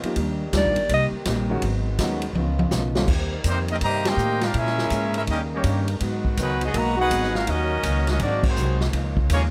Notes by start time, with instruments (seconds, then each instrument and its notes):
Already playing: trombone section D#3 B3 C#4 F4
0.03 grand piano F3 A#3 D#4 G4, muted upright bass stroke, ride
0.16 upright bass D#2, hollow-body jazz guitar D#3 G3 A#3, trombone section A#3 D4 G4, kick, ride
0.20 hollow-body jazz guitar D4
0.53 upright bass D2, hollow-body jazz guitar D#3 G3 A#3 D4, grand piano F3 A#3 D#4 G4, kick, snare, hi-hat pedal, ride
0.57 alto saxophone D5
0.64 upright bass A#1
0.75 upright bass G1, ride
0.88 upright bass C2, hollow-body jazz guitar C3 G3 A#3 D#4, trombone section A#3 C4, kick, ride
0.94 alto saxophone D#5
1.12 muted upright bass stroke
1.25 upright bass A#1, hollow-body jazz guitar C3 G3 A#3 D#4, kick, snare, hi-hat pedal, ride
1.50 grand piano D#3 G#3 C#4 F#4
1.61 upright bass G#1, hollow-body jazz guitar G#2 F#3 B3 D#4, trombone section G#3 B3 F#4, kick, ride
1.99 upright bass D#2, hollow-body jazz guitar G#2 F#3 B3 D#4, grand piano D#3 G#3 C#4 F#4, kick, snare, hi-hat pedal, ride
2.22 ride
2.33 upright bass C#2, hollow-body jazz guitar C#3 F3, trombone section D#3 C#4 F4, high tom
2.38 hollow-body jazz guitar B3 D#4
2.59 high tom
2.71 upright bass B1, hollow-body jazz guitar C#3 F3 B3 D#4, snare, hi-hat pedal
2.95 grand piano D#2 D3 G3 C4 F4, snare
3.08 upright bass D#2, trombone section C3 G3 D#4 A#4, hollow-body jazz guitar D#3 A#3 C4 G4, kick, crash
3.44 upright bass F2, trombone section C3 G3 C4, hollow-body jazz guitar D#3 A#3 C4 G4, trumpet section G4, kick, hi-hat pedal, ride
3.48 trumpet section A#3 D#4 C5
3.68 trombone section A#3 C4 D#4, trumpet section C4 G4 A#4 D#5, ride
3.81 upright bass G2, trombone section C3 G3 A#3, hollow-body jazz guitar D#3 A#3 C4 G4, trumpet section G4 C5 D#5 A#5, kick, ride
4.05 trombone section A#3 C4 G4, trumpet section D#4 A#4 C5 G5, snare, ride
4.17 upright bass A2, hollow-body jazz guitar D#3 A#3 C4 G4, hi-hat pedal
4.41 trumpet section D4 G4 A#4 F5, trombone section F4, snare, ride
4.52 hollow-body jazz guitar A#2 E3 G#3 C#4, upright bass A#2, trombone section C#3 G#3 C#4 E4, kick, ride
4.57 trumpet section C#4 G#4 A#4 E5
4.66 snare
4.78 snare
4.90 upright bass G#2, hollow-body jazz guitar A#2 E3 G#3 C#4, kick, hi-hat pedal, ride
5.14 trombone section G#3 C#4 E4, trumpet section C#4 G#4 A#4 E5, ride
5.26 upright bass D#2, hollow-body jazz guitar D#3 A#3 C#4, trombone section G3 A#3 D#4, kick, ride
5.30 trumpet section C#4 G4 A#4 D#5, hollow-body jazz guitar G4
5.53 trombone section G3 A#3 C#4, trumpet section A#3 D#4 G4 C#5
5.63 upright bass G2, hollow-body jazz guitar D#3 A#3 C#4 G4, kick, hi-hat pedal, ride
5.88 ride
5.99 hollow-body jazz guitar G#2 F#3 B3 D#4, upright bass G#2, trombone section D#3 G#3 B3 F#4, kick, ride
6.25 kick
6.37 upright bass C#2, hollow-body jazz guitar G#2 F#3 B3 D#4, trombone section D#3 F#3 B3, kick, hi-hat pedal, ride
6.41 trumpet section G#3 D#4 F#4 B4
6.60 trombone section F#3 B3 D#4, ride
6.65 trumpet section B3 F#4 G#4 D#5
6.73 upright bass B1, hollow-body jazz guitar G#2 F#3 B3 D#4, trombone section A#3, trumpet section F#4 D#5 A#5, kick, ride
6.77 trumpet section B4
6.96 trombone section B3 D#4 F#4
7.00 trumpet section D#4 G#4 B4 F#5
7.11 upright bass G#1, hollow-body jazz guitar G#2 F#3 B3 D#4, kick, hi-hat pedal, ride
7.23 snare
7.34 trumpet section C#4 F#4 A#4 F5, trombone section F4, snare
7.46 upright bass D#2, hollow-body jazz guitar D#3 A#3 C#4, trombone section F#3 A#3 C#4 D#4, trumpet section C#4 D#5, kick, ride
7.50 trumpet section F#4 A#4, hollow-body jazz guitar F#4
7.83 upright bass C#2, hollow-body jazz guitar D#3 A#3 C#4 F#4, kick, hi-hat pedal, ride
8.07 trombone section F#3 A#3 D#4, trumpet section C#4 F#4 A#4 D#5, snare, ride
8.19 upright bass G#1, hollow-body jazz guitar G#2 F#3 C4 D#4, trombone section G#3 C4 D4 F#4, kick, ride
8.23 trumpet section A#3 D#4 F#4 D5
8.43 trombone section D#3 F#3 C4, kick, crash
8.48 trumpet section G#3 D#4 F#4 C5
8.56 upright bass C2, hollow-body jazz guitar G#2 F#3 C4 D#4, hi-hat pedal
8.80 snare
8.91 upright bass C#2, hollow-body jazz guitar C#3 F3 A#3 D#4, trombone section D#3 A#3 C#4 F4, kick, ride
9.17 kick
9.30 upright bass D#2, hollow-body jazz guitar C#3 F3 A#3 D#4, trombone section G#3 A#3 C#4, trumpet section A#3 F4 G#4 C#5, kick, hi-hat pedal, ride